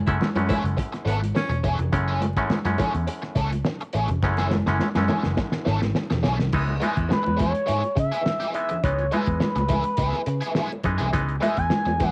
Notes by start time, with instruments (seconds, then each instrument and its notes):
0.07 picked electric bass F#1, clav F#2 E3 G#3 A3 C#4, baritone saxophone E4, muted overdriven electric guitar stroke, kick, closed hi-hat
0.21 muted picked electric bass stroke, snare, muted conga, high conga
0.34 picked electric bass F#2, clav F#2 E3 G#3 A3 C#4, baritone saxophone C#4, muted overdriven electric guitar stroke, closed hi-hat, muted conga, high conga
0.49 overdriven electric guitar E3 A3 C#4 G#4, baritone saxophone E4, kick, closed hi-hat, high conga, low conga
0.64 picked electric bass F#1, muted overdriven electric guitar stroke, closed hi-hat
0.77 muted overdriven electric guitar stroke, kick, closed hi-hat, muted conga
0.93 muted overdriven electric guitar stroke, snare, closed hi-hat, muted conga
1.05 picked electric bass G#1, overdriven electric guitar E3 A3 C#4 A4, baritone saxophone B3, closed hi-hat
1.21 muted overdriven electric guitar stroke, closed hi-hat, high conga
1.35 baritone saxophone C#4, muted overdriven electric guitar stroke, snare, muted conga
1.49 picked electric bass E1, muted overdriven electric guitar stroke, closed hi-hat, muted conga
1.64 picked electric bass E1, overdriven electric guitar E3 A3 C#4 G#4, kick, closed hi-hat
1.79 picked electric bass F1, muted overdriven electric guitar stroke, closed hi-hat, low conga
1.92 picked electric bass F#1, clav F#2 E3 G#3 A3 C#4, muted overdriven electric guitar stroke, kick, closed hi-hat
2.08 overdriven electric guitar E3 A3 C#4 G#4
2.21 muted overdriven electric guitar stroke, closed hi-hat, high conga
2.36 picked electric bass G#1, clav F#2 E3 G#3 A3 C#4, muted overdriven electric guitar stroke, kick, closed hi-hat
2.50 muted picked electric bass stroke, snare, muted conga, high conga
2.65 picked electric bass F#2, clav F#2 E3 G#3 A3 C#4, muted overdriven electric guitar stroke, snare, closed hi-hat, muted conga, high conga
2.78 overdriven electric guitar E3 A3 C#4 G#4, kick, closed hi-hat, high conga, low conga
2.94 picked electric bass E2, muted overdriven electric guitar stroke, closed hi-hat
3.07 muted overdriven electric guitar stroke, closed hi-hat
3.22 muted overdriven electric guitar stroke, snare
3.35 picked electric bass C#2, overdriven electric guitar E3 A3 C#4 A4, kick, closed hi-hat
3.52 muted overdriven electric guitar stroke, closed hi-hat, high conga
3.65 muted overdriven electric guitar stroke, snare
3.81 muted overdriven electric guitar stroke, closed hi-hat
3.93 picked electric bass A1, overdriven electric guitar E3 A3 C#4 G#4, closed hi-hat
4.08 picked electric bass F1, muted overdriven electric guitar stroke, closed hi-hat, low conga
4.23 picked electric bass F#1, clav F#2 E3 G#3 A3 C#4, muted overdriven electric guitar stroke, kick, snare
4.37 overdriven electric guitar E3 A3 C#4 G#4, snare, muted conga
4.51 muted overdriven electric guitar stroke, snare, high conga
4.66 picked electric bass F#1, clav F#2 E3 G#3 A3 C#4, muted overdriven electric guitar stroke, snare
4.79 muted picked electric bass stroke, snare, muted conga, high conga
4.95 picked electric bass F#2, clav F#2 E3 G#3 A3 C#4, muted overdriven electric guitar stroke, snare, muted conga, high conga
5.08 overdriven electric guitar E3 A3 C#4 G#4, snare, high conga, low conga
5.23 picked electric bass F#1, muted overdriven electric guitar stroke, snare
5.37 muted overdriven electric guitar stroke, kick, snare, muted conga
5.52 muted overdriven electric guitar stroke, snare
5.65 picked electric bass G#1, overdriven electric guitar E3 A3 C#4 A4, snare
5.81 muted overdriven electric guitar stroke, snare, high conga
5.95 muted overdriven electric guitar stroke, snare, muted conga
6.10 picked electric bass E1, muted overdriven electric guitar stroke, snare, low conga
6.23 picked electric bass B1, overdriven electric guitar E3 A3 C#4 G#4, snare
6.38 picked electric bass C2, muted overdriven electric guitar stroke, snare, low conga
6.52 picked electric bass C#2, clav E3 G#3 B3 D#4, kick, crash, muted conga
6.68 muted conga
6.80 clav E3 G#3 B3 D#4, overdriven electric guitar G#3 B3 E4 G#4, closed hi-hat, high conga
6.96 picked electric bass E2, kick, closed hi-hat
7.09 analog synth lead B4, muted overdriven electric guitar stroke, muted picked electric bass stroke, snare, muted conga, high conga
7.23 muted overdriven electric guitar stroke, high conga
7.28 picked electric bass E2
7.37 overdriven electric guitar G#3 B3 E4 G#4, kick, closed hi-hat, high conga, low conga
7.42 analog synth lead C#5
7.53 muted overdriven electric guitar stroke, closed hi-hat
7.66 picked electric bass G#2, overdriven electric guitar G#3 B3 E4 G#4, closed hi-hat, muted conga
7.84 closed hi-hat, muted conga
7.95 picked electric bass C#3, muted overdriven electric guitar stroke, kick, closed hi-hat
8.00 analog synth lead E5
8.12 overdriven electric guitar G#3 B3 E4 G#4, closed hi-hat
8.25 muted overdriven electric guitar stroke, snare, muted conga
8.40 overdriven electric guitar G#3 B3 E4 G#4, closed hi-hat, muted conga
8.54 clav E3 G#3 B3 D#4, analog synth lead E5, muted overdriven electric guitar stroke, closed hi-hat
8.69 muted overdriven electric guitar stroke, closed hi-hat, low conga
8.84 picked electric bass C#2, clav E3 G#3 B3 D#4, analog synth lead C#5, kick, closed hi-hat
8.99 closed hi-hat, muted conga
9.12 clav E3 G#3 B3 D#4, overdriven electric guitar G#3 B3 E4 G#4, analog synth lead B4, closed hi-hat, high conga
9.26 picked electric bass E2, kick, closed hi-hat
9.40 analog synth lead B4, muted overdriven electric guitar stroke, muted picked electric bass stroke, snare, muted conga, high conga
9.56 picked electric bass C#2, muted overdriven electric guitar stroke, snare, closed hi-hat, muted conga, high conga
9.69 overdriven electric guitar G#3 B3 E4 G#4, kick, closed hi-hat, high conga, low conga
9.84 muted overdriven electric guitar stroke, closed hi-hat
9.97 picked electric bass C#2, overdriven electric guitar G#3 B3 E4 G#4, kick, closed hi-hat, muted conga
10.13 snare, muted conga
10.26 picked electric bass C#3, muted overdriven electric guitar stroke, closed hi-hat
10.41 overdriven electric guitar G#3 B3 E4 G#4, closed hi-hat
10.55 overdriven electric guitar G#3 B3 E4 G#4, snare, muted conga
10.72 muted conga
10.83 picked electric bass F#2, clav E3 G#3 B3 D#4, muted overdriven electric guitar stroke, kick, closed hi-hat
10.98 picked electric bass C2, overdriven electric guitar G#3 B3 E4 G#4, closed hi-hat, low conga
11.13 picked electric bass C#2, clav E3 G#3 B3 D#4, kick, closed hi-hat, muted conga
11.28 closed hi-hat
11.41 clav E3 G#3 B3 D#4, overdriven electric guitar G#3 B3 E4 G#4, analog synth lead E5, closed hi-hat, high conga
11.57 picked electric bass E2, analog synth lead G#5, kick, closed hi-hat
11.70 muted overdriven electric guitar stroke, muted picked electric bass stroke, snare, muted conga, high conga
11.85 picked electric bass E2, muted overdriven electric guitar stroke, snare, high conga
12.00 overdriven electric guitar G#3 B3 E4 G#4, analog synth lead F#5, kick, closed hi-hat, high conga, low conga